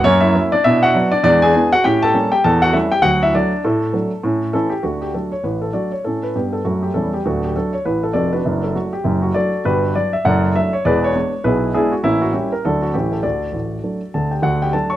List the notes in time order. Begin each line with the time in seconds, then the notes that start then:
0.04 F#2 A#3 C#4 C#5
0.21 E4 E5
0.34 F#3 A#3 C#4
0.52 D4 D5
0.64 B2 D4 E4 E5
0.83 F#4 F#5
0.95 F#3 B3 D4
1.12 D4 D5
1.24 E2 G#3 D4 D5
1.42 G#4 G#5
1.55 E3 B3 D4
1.73 F#4 F#5
1.84 A2 C#4 G4 G5
2.03 A4 A5
2.14 G3 A#3 C#4
2.32 G4 G5
2.44 E2 A4 A5
2.62 F#4 F#5
2.73 G3 A3 C#4 E4 E5
2.92 G4 G5
3.02 D2 F#3 F#4 F#5
3.23 E4 E5
3.34 F#3 A3 D4 D5
3.64 A2 A3 A4
3.93 F#3 A3 D4
4.23 A2 C#4
4.53 E3 A3 C#4 E4 A4
4.70 G4
4.83 D2 D3 A3 D4 F#4
5.01 G4
5.14 F#3 A3 D4 F#4 A4
5.32 C#5
5.44 A1 A2 B4
5.62 A4
5.73 F#3 A3 D4 F#4 A4 D5
5.92 C#5
6.04 A2 C#4 A4
6.23 B4
6.36 G2 B3 G4
6.53 A4
6.65 F#2 A3 F#4
6.83 G4
6.94 E2 G3 C#4 E4 A4
7.14 G4
7.25 D1 D2 A3 D4 F#4
7.44 G4
7.56 F#3 A3 D4 F#4 A4
7.73 C#5
7.85 A1 A2 B4
8.03 A4
8.13 F1 F2 F#4 A4 D5
8.33 D4 F#4 B4
8.45 F#1 F#2
8.64 A4
8.75 F#3 A3 D4 F#4
8.93 G4
9.04 F#1 F#2
9.22 F#4
9.34 F#3 A3 D4 F#4 A4 D5
9.65 G1 G2 F#4 G4 B4
9.95 F#3 D4 D5
10.13 E5
10.25 F#1 F#2 A4 D5 F#5
10.55 F#3 A3 D4 E5
10.73 C#5
10.85 E1 E2 G#4 B4 D5
11.04 C#5
11.15 G#3 B3 D4
11.44 B1 B2 E4 G#4 B4
11.74 G#3 B3 D4 E4 G#4
11.92 F#4
12.03 A1 A2 A#3 C#4 E4
12.22 F#4
12.33 G3 A#3 C#4 E4 G4
12.52 A#4
12.65 D2 D3 F#3 A3 D4 F#4 A4
12.82 F#4
12.94 A1 A2 E3 A3 C#4 E4 G4
13.12 A4
13.23 D2 D3 F#4 A4 D5
13.52 A1 A2
13.83 F#3 A3 D4
14.14 D2 D3 A4 A5
14.31 G4 G5
14.42 D2 D3 F#4 F#5
14.62 G4 G5
14.73 F#3 A3 D4 A4 A5
14.90 C#5 C#6